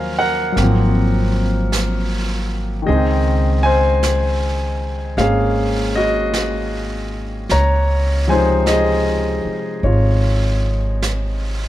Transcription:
0.00 0.52 D#2 medium
0.00 0.59 F3 soft
0.00 0.51 F#3 soft
0.00 0.54 A#3 soft
0.00 0.58 C#4 soft
0.00 0.20 A#4 medium
0.00 0.58 C5 medium
0.00 0.59 F5 medium
0.00 0.59 G#5 medium
0.19 1.69 A#4 medium
0.19 1.68 F#5 medium
0.52 2.85 F#3 soft
0.52 2.87 A#3 soft
0.57 2.83 G#1 medium
0.57 2.88 C4 soft
0.57 brush sweep soft
0.57 snare soft
0.63 2.90 F3 soft
1.72 brush sweep soft
1.72 snare soft
1.72 hi-hat pedal soft
2.82 7.47 D#3 soft
2.82 5.16 G#3 soft
2.87 5.14 C#2 medium
2.87 7.51 C4 soft
2.87 3.61 G#4 medium
2.87 3.66 D#5 medium
2.87 brush sweep soft
2.93 7.53 D#4 medium
3.63 5.14 C5 medium
3.63 5.22 G#5 medium
4.03 brush sweep soft
4.03 snare soft
4.03 hi-hat pedal soft
5.17 7.46 G#1 medium
5.17 7.50 G#3 soft
5.17 7.51 A#3 soft
5.17 7.51 C#4 soft
5.17 5.92 G#4 medium
5.17 5.97 F5 medium
5.17 brush sweep soft
5.17 snare soft
5.96 7.09 F#4 medium
5.96 7.08 D#5 medium
6.34 brush sweep soft
6.34 snare soft
6.34 hi-hat pedal soft
7.49 9.40 C#2 medium
7.49 8.24 C#5 medium
7.49 8.31 A#5 medium
7.49 brush sweep soft
7.49 snare soft
8.28 11.68 C3 soft
8.28 11.68 F3 soft
8.28 11.68 G#3 soft
8.28 8.65 C5 medium
8.28 8.68 G#5 medium
8.32 11.68 D#4 soft
8.66 9.80 G#4 medium
8.66 9.87 D#5 medium
8.66 brush sweep soft
8.66 snare soft
8.66 hi-hat pedal soft
9.45 muted upright bass stroke soft
9.83 11.68 G#1 medium
9.83 11.68 F4 soft
9.83 11.68 C#5 medium
9.83 brush sweep soft
11.02 brush sweep soft
11.02 snare soft
11.02 hi-hat pedal soft

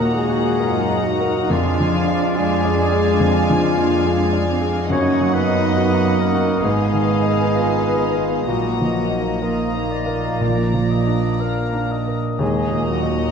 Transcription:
0.00 0.56 D#2 soft
0.00 1.46 D#2 soft
0.00 1.53 A#2 soft
0.00 0.15 A#3 medium
0.00 1.52 A#3 soft
0.00 1.47 D#4 soft
0.00 0.29 F#4 soft
0.00 0.56 F#4 soft
0.00 0.16 A#4 medium
0.00 0.59 A#4 soft
0.00 0.89 D#5 soft
0.00 1.53 D#5 soft
0.00 1.48 F#5 soft
0.00 0.16 A#5 soft
0.00 1.47 A#5 soft
0.14 1.05 G#3 medium
0.14 1.06 G#4 medium
0.14 1.05 G#5 medium
0.29 0.78 F#4 soft
0.59 1.49 F#2 soft
0.59 1.05 F4 medium
0.59 1.08 A#4 soft
0.89 1.38 D#5 soft
1.05 1.50 F#3 medium
1.05 1.51 D#4 soft
1.05 1.50 F#4 medium
1.09 1.52 F#5 medium
1.21 1.50 A#4 soft
1.50 3.18 F2 medium
1.50 4.88 F2 medium
1.50 2.37 F3 medium
1.50 4.66 G#3 medium
1.50 2.35 D4 soft
1.50 3.23 D4 medium
1.50 2.38 F4 medium
1.50 4.66 D5 soft
1.50 2.36 F5 soft
1.50 2.36 F5 medium
1.50 2.35 G#5 soft
1.80 2.26 F3 soft
2.08 2.54 F4 soft
2.36 4.49 G#3 medium
2.36 4.88 D4 medium
2.36 2.82 G#4 soft
2.36 4.49 G#4 medium
2.36 4.88 F5 medium
2.36 4.87 G#5 medium
2.36 4.49 G#5 medium
2.65 3.10 D5 soft
2.92 3.38 G#4 medium
3.20 4.87 F2 soft
3.20 3.65 C4 medium
3.50 3.96 F3 medium
3.65 4.06 A#3 medium
3.78 4.23 F4 soft
4.06 4.48 G#3 medium
4.06 4.51 G#4 medium
4.33 4.79 D5 soft
4.49 4.91 C4 medium
4.61 4.91 G#4 soft
4.89 6.59 F#2 medium
4.89 6.64 F#2 medium
4.89 6.65 A#3 medium
4.89 5.79 A#3 soft
4.89 5.31 C#4 medium
4.89 6.61 D#4 medium
4.89 5.36 C#5 medium
4.89 9.30 D#5 medium
4.89 6.64 D#5 medium
4.89 6.64 F#5 medium
4.89 5.32 C#6 medium
5.21 5.67 F#3 soft
5.34 6.20 B3 medium
5.34 6.22 B4 medium
5.34 6.22 B5 medium
5.49 5.95 D#4 soft
5.76 6.22 D#4 medium
5.76 6.23 F#4 soft
6.05 6.52 D#5 soft
6.21 6.65 A#3 medium
6.21 6.65 C#4 soft
6.21 6.65 A#4 medium
6.21 6.64 A#5 medium
6.34 6.64 F#4 soft
6.63 8.44 G#1 soft
6.63 8.44 G#2 medium
6.63 8.49 G#3 medium
6.63 8.47 B3 medium
6.63 7.08 B3 soft
6.63 8.45 B3 soft
6.63 8.49 G#4 medium
6.63 8.46 D#5 medium
6.63 8.48 F5 medium
6.63 8.49 G#5 medium
6.93 7.42 D#3 soft
7.09 8.49 D#4 soft
7.23 7.73 D#4 soft
7.55 8.05 F4 soft
7.86 8.36 B4 soft
8.17 8.49 F4 soft
8.47 10.37 A#1 soft
8.47 10.37 A#2 soft
8.47 9.42 F#3 soft
8.47 12.02 A#3 soft
8.47 9.42 A#3 soft
8.47 11.87 A#3 soft
8.47 9.44 F#4 medium
8.47 9.42 D#5 soft
8.47 9.44 F#5 soft
8.47 9.41 A#5 soft
8.81 9.31 F3 soft
9.10 9.62 D#4 soft
9.42 11.40 F3 soft
9.42 10.40 A#3 soft
9.42 11.40 F4 soft
9.42 9.95 A#4 soft
9.42 9.93 D#5 soft
9.42 10.40 D#5 soft
9.42 11.40 F5 soft
9.42 10.39 A#5 soft
9.75 10.28 D#4 soft
9.91 10.92 D5 soft
10.06 10.41 A#4 soft
10.41 12.15 A#1 soft
10.41 11.86 A#2 medium
10.41 12.36 A#2 soft
10.41 12.16 A#3 soft
10.41 12.19 D5 soft
10.41 12.15 A#5 soft
10.74 11.27 F3 soft
10.91 11.42 D#5 soft
11.07 11.60 D4 soft
11.40 11.94 A#4 soft
11.40 11.93 F5 soft
11.73 12.27 D4 soft
11.92 12.40 D#5 soft
12.08 12.41 A#4 soft
12.39 13.31 D#2 medium
12.39 12.84 G#3 medium
12.39 13.31 A#3 soft
12.39 12.90 G#4 medium
12.39 13.31 D#5 soft
12.39 12.86 G#5 medium
12.39 13.31 A#5 soft
12.71 13.22 A#2 soft
12.88 13.31 F#3 soft
12.88 13.31 F#4 medium
12.88 13.31 F#5 soft
13.03 13.31 D#4 soft

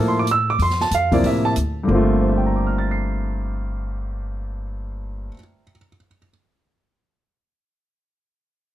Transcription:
0.00 0.56 A2 medium
0.00 0.24 F3 medium
0.00 0.24 A#3 medium
0.00 0.24 E4 medium
0.00 0.25 A4 medium
0.08 0.17 C6 medium
0.19 0.28 D6 medium
0.27 closed hi-hat soft
0.31 0.49 E6 medium
0.50 0.60 D6 medium
0.59 0.89 F2 medium
0.59 0.81 C6 medium
0.59 open hi-hat soft
0.70 snare soft
0.80 0.92 A5 medium
0.80 snare soft
0.91 1.22 F2 medium
0.91 1.13 F5 medium
0.91 closed hi-hat soft
1.11 1.54 C3 medium
1.11 1.54 F3 medium
1.11 1.54 A#3 medium
1.11 1.55 E4 medium
1.11 1.24 D5 medium
1.11 kick medium
1.11 open hi-hat soft
1.23 1.54 A2 medium
1.23 1.45 E5 medium
1.23 open hi-hat soft
1.45 1.52 A5 medium
1.56 1.87 D2 medium
1.56 closed hi-hat soft
1.83 5.27 G2 medium
1.83 5.29 D3 medium
1.88 5.28 G1 medium
1.88 5.32 A#3 medium
1.88 5.34 C4 medium
1.93 5.39 A3 medium
1.93 5.37 F4 medium
2.21 5.61 C5 soft
2.29 5.69 E5 soft
2.37 5.77 G5 soft
2.46 5.86 A#5 soft
2.56 5.96 D6 soft
2.67 6.07 F6 soft
2.78 6.18 A6 soft
2.91 6.30 C7 soft

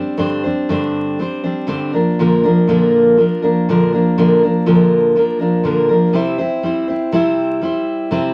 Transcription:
0.00 0.17 G3 soft
0.00 0.17 C4 soft
0.00 0.18 D4 soft
0.00 0.18 C5 soft
0.18 0.44 G2 medium
0.18 0.44 D3 medium
0.18 0.44 G3 medium
0.18 0.44 C4 medium
0.18 0.44 D4 medium
0.18 0.42 C5 medium
0.44 0.69 G3 soft
0.44 0.69 C4 soft
0.44 0.70 D4 medium
0.44 0.69 C5 medium
0.69 1.19 G2 medium
0.69 1.19 D3 medium
0.69 1.18 G3 medium
0.69 1.19 C4 medium
0.69 1.21 D4 medium
0.69 1.20 C5 medium
1.19 1.44 G3 medium
1.19 1.44 C4 medium
1.19 1.43 D4 medium
1.19 1.42 C5 medium
1.44 1.66 G3 soft
1.44 1.67 C4 soft
1.44 1.68 D4 medium
1.44 1.68 C5 medium
1.67 1.93 G2 medium
1.67 1.93 D3 medium
1.67 1.93 G3 medium
1.67 1.94 C4 medium
1.67 1.93 D4 medium
1.67 1.93 C5 medium
1.93 2.19 F3 soft
1.93 2.20 A#3 soft
1.93 2.19 D4 soft
1.93 2.18 A#4 medium
2.19 2.44 A#2 medium
2.19 2.44 D3 medium
2.19 2.44 F3 medium
2.19 2.44 A#3 medium
2.19 2.43 D4 medium
2.19 2.42 A#4 medium
2.44 2.67 F3 soft
2.44 2.67 A#3 medium
2.44 2.68 D4 medium
2.44 2.68 A#4 medium
2.67 3.17 A#2 medium
2.67 3.18 D3 medium
2.67 3.16 F3 medium
2.67 3.17 A#3 medium
2.67 3.18 D4 medium
2.67 3.19 A#4 medium
3.17 3.42 F3 medium
3.17 3.43 A#3 medium
3.17 3.42 D4 medium
3.17 3.41 A#4 medium
3.42 3.68 F3 soft
3.42 3.68 A#3 medium
3.42 3.68 D4 medium
3.42 3.67 A#4 medium
3.69 3.93 A#2 medium
3.69 3.93 D3 medium
3.69 3.93 F3 medium
3.69 3.93 A#3 medium
3.69 3.93 D4 medium
3.69 3.91 A#4 medium
3.92 4.17 F3 soft
3.92 4.17 A#3 medium
3.92 4.18 D4 soft
3.92 4.17 A#4 medium
4.18 4.42 A#2 medium
4.18 4.42 D3 medium
4.18 4.42 F3 medium
4.18 4.43 A#3 medium
4.18 4.43 D4 medium
4.18 4.42 A#4 medium
4.43 4.65 F3 soft
4.43 4.67 A#3 soft
4.43 4.66 D4 medium
4.43 4.67 A#4 medium
4.66 5.16 A#2 medium
4.66 5.16 D3 medium
4.66 5.14 F3 medium
4.66 5.15 A#3 medium
4.66 5.16 D4 medium
4.66 5.17 A#4 medium
5.16 5.40 F3 medium
5.16 5.41 A#3 medium
5.16 5.40 D4 medium
5.16 5.38 A#4 medium
5.39 5.64 F3 soft
5.39 5.64 A#3 soft
5.39 5.64 D4 soft
5.39 5.65 A#4 soft
5.64 5.89 A#2 medium
5.64 5.90 D3 medium
5.64 5.90 F3 medium
5.64 5.90 A#3 medium
5.64 5.89 D4 medium
5.64 5.88 A#4 medium
5.89 6.13 F3 soft
5.89 6.14 A#3 soft
5.89 6.15 D4 soft
5.89 6.14 A#4 medium
6.13 6.38 C3 medium
6.13 6.39 G3 medium
6.13 6.39 C4 medium
6.13 6.38 E4 medium
6.13 6.37 C5 medium
6.38 6.63 C4 medium
6.38 6.64 E4 medium
6.38 6.63 C5 medium
6.63 6.88 G3 medium
6.63 6.89 C4 medium
6.63 6.88 E4 medium
6.63 6.86 C5 medium
6.88 7.12 C4 soft
6.88 7.13 E4 soft
6.88 7.13 C5 medium
7.12 7.62 C3 medium
7.12 7.60 G3 medium
7.12 7.61 C4 loud
7.12 7.62 E4 loud
7.12 7.63 C5 medium
7.61 8.11 G3 medium
7.61 8.11 C4 medium
7.61 8.11 E4 medium
7.61 8.12 C5 medium
8.11 8.34 C3 medium
8.11 8.34 G3 medium
8.11 8.34 C4 medium
8.11 8.34 E4 medium
8.11 8.34 C5 medium

